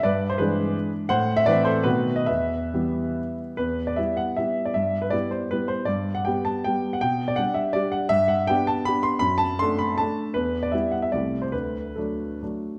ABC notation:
X:1
M:3/4
L:1/16
Q:1/4=157
K:Em
V:1 name="Grand piano"
[Bd]3 c [^GB]6 z2 | [cf]3 e [Bd]2 [Ac]2 [FB]3 ^d | [Be]8- [Be]2 z2 | B3 d e2 f2 e3 d |
e3 B d2 c2 B2 c2 | d3 f g2 a2 g3 f | g3 d f2 e2 d2 f2 | [K:Dmix] e2 f2 g2 a2 b2 c'2 |
b2 a2 c'2 b2 a4 | B3 d e2 f e d3 c | B4 A4 z4 |]
V:2 name="Grand piano"
G,,4 [E,^G,D]8 | A,,4 [E,A,C]4 [B,,^D,A,B,]4 | E,,4 [E,G,B,]8 | E,,4 [G,B,E]4 [G,B,E]4 |
G,,4 [G,B,E]4 [G,B,E]4 | G,,4 [G,B,G]4 [G,B,G]4 | B,,4 [G,DG]4 [G,DG]4 | [K:Dmix] G,,4 [B,DG]4 [B,DG]4 |
F,,4 [A,DA]4 [A,DA]4 | E,,4 [G,B,E]4 [C,,G,A,E]4 | D,,4 [F,A,D]4 [F,A,D]4 |]